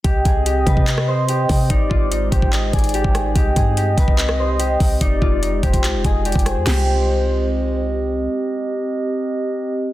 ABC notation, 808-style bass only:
X:1
M:4/4
L:1/16
Q:1/4=145
K:Cm
V:1 name="808-style bass" clef=bass
C,,2 C,,4 C,8 C,2 | A,,,2 A,,,4 A,,,4 A,,,3 A,,,3 | C,,2 G,,4 C,,8 C,,2 | F,,,2 F,,,4 F,,,2 C,, F,,, F,,,3 F,,,2 F,, |
C,,16 | z16 |]